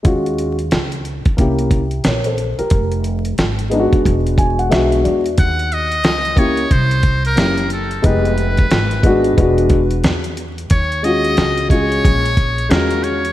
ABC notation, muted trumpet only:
X:1
M:4/4
L:1/16
Q:"Swing 16ths" 1/4=90
K:Ebm
V:1 name="Muted trumpet"
z16 | z16 | g2 e4 d2 =c3 B3 =A2 | c8 z8 |
d2 e4 d6 B2 d2 |]